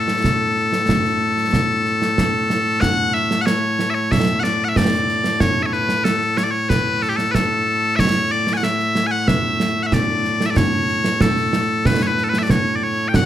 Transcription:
Already playing: bagpipes A2 A3 A4
0.08 snare
0.24 concert bass drum, snare
0.57 snare
0.73 snare
0.89 concert bass drum, snare
1.05 snare
1.37 snare
1.53 concert bass drum, snare
1.86 snare
2.02 snare
2.18 concert bass drum, snare
2.50 snare
2.81 bagpipes F#5, concert bass drum, snare
3.14 bagpipes E5, snare
3.31 snare
3.42 bagpipes F#5
3.46 bagpipes C#5, snare
3.79 snare
3.90 bagpipes E5
3.95 bagpipes C#5
4.12 bagpipes E5, concert bass drum, snare
4.40 bagpipes D5 F#5
4.44 snare
4.64 bagpipes F#5
4.69 bagpipes E5
4.76 bagpipes D5, concert bass drum, snare
5.09 snare
5.24 snare
5.40 bagpipes C#5, concert bass drum, snare
5.63 bagpipes C#5 E5
5.73 bagpipes B4, snare
5.89 snare
6.04 bagpipes A4, snare
6.21 snare
6.37 bagpipes C#5, snare
6.44 bagpipes D5
6.51 bagpipes C#5
6.69 bagpipes B4, concert bass drum, snare
7.02 bagpipes A4, snare
7.09 bagpipes G4
7.16 bagpipes A4, snare
7.31 bagpipes A4 B4, concert bass drum, snare
7.96 bagpipes C#5 E5, concert bass drum, snare
8.31 bagpipes D5, snare
8.47 snare
8.53 bagpipes F#5 G#5
8.63 bagpipes E5, snare
8.80 snare
8.95 snare
9.07 bagpipes G#5
9.11 bagpipes F#5
9.28 bagpipes E5, concert bass drum, snare
9.60 snare
9.83 bagpipes E5 F#5
9.92 bagpipes D5, concert bass drum, snare
10.24 snare
10.41 snare
10.46 bagpipes E5
10.50 bagpipes D5
10.56 bagpipes C#5, concert bass drum, snare
10.89 snare
11.04 snare
11.21 bagpipes A4, concert bass drum, snare
11.37 snare
11.53 snare
11.85 bagpipes B4, concert bass drum, snare
12.02 bagpipes C#5
12.07 bagpipes B4
12.18 snare
12.24 bagpipes A4
12.29 bagpipes B4
12.34 snare
12.39 bagpipes E5
12.43 bagpipes D5
12.50 bagpipes C#5, concert bass drum, snare
12.76 bagpipes D5
12.84 bagpipes C#5
13.08 bagpipes G5
13.14 bagpipes F#5, concert bass drum, snare

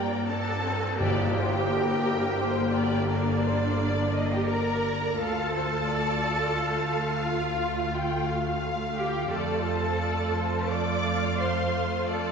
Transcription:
Already playing: double bass section G2, cello section G3, viola section A#3, clarinet G4, violin section D5 G5 A#5
0.28 viola section D4, cello section A4, violin section A5
0.64 viola section C4
0.99 double bass section G1, timpani G2, viola section D3 A#3, cello section G4, violin section D5 G5, tam-tam
1.37 violin section C5
1.71 violin section A#4
2.41 violin section C5
2.75 violin section D5
3.11 cello section D4, violin section A#4 D5
3.43 violin section C5
3.78 violin section D5
4.14 violin section D#5
4.33 cello section G4, violin section G5
4.48 cello section A#4, violin section D5 A#5
5.18 double bass section D2, viola section A3 F4, cello section A4, violin section F5 A5
5.53 violin section C5
5.87 violin section D5
6.56 violin section F5
7.25 cello section F4, violin section F5
7.95 violin section G5
8.27 violin section F5
8.96 cello section G4, violin section G5
9.31 double bass section F2, viola section A3 F4, cello section A4, violin section D5 A5
9.64 violin section C5
10.00 violin section D5
10.34 violin section C5
10.70 violin section A4 D6, cello section D5
11.03 violin section F5
11.38 cello section C5, violin section C6
12.08 cello section A4, violin section D5 A5

